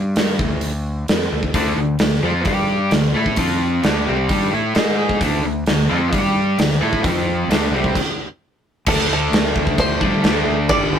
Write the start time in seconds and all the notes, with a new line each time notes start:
Already playing: G2
0.16 snare, open hi-hat
0.39 D2, kick
0.61 open hi-hat
1.08 F2, snare, open hi-hat
1.22 snare
1.32 D2
1.43 kick
1.54 D2 D3 A3 D4, kick, open hi-hat
1.77 D2 D3 A3
1.99 D2 D3 A3, snare, open hi-hat
2.13 snare
2.22 F2 F3 C4 F4
2.45 G2 G3 D4 G4, kick, open hi-hat
2.91 D2 D3 A3, snare, open hi-hat
3.14 A2 A3 E4 A4
3.26 kick
3.36 F2 F3 C4 F4, kick, open hi-hat
3.84 D2 D3 A3 D4, snare, open hi-hat
4.07 C2 C3 G3 C4
4.29 G2 G3 D4 G4, kick, open hi-hat
4.53 A2 A3 E4 A4
4.75 G#2 G#3 D#4 G#4, snare, open hi-hat
4.88 snare
5.09 kick
5.20 D2 D3 A3 D4, kick, open hi-hat
5.45 D2 D3 A3
5.66 D2 D3 A3, snare, open hi-hat
5.89 F2 F3 C4 F4
6.12 G2 G3 D4 G4, kick, open hi-hat
6.58 D2 D3 A3, snare, open hi-hat
6.72 snare
6.81 A2 A3 E4 A4
6.93 kick
7.04 F2 F3 C4 F4, kick, open hi-hat
7.48 D2 D3 A3 D4, snare, open hi-hat
7.71 C2 C3 G3 C4
7.84 kick
7.95 kick, crash
8.86 D2 D3 A3 D4 A4, kick, crash
9.10 D2 A4
9.32 D2, snare, crash
9.45 snare
9.56 D2, kick
9.67 kick
9.78 D2 C5, kick, crash
10.01 G2 D3 A3 D4, kick
10.23 D2 D3 A3 D4, snare, crash
10.47 D2
10.69 G1 G2 D3 G3 D5, kick, crash
10.93 G1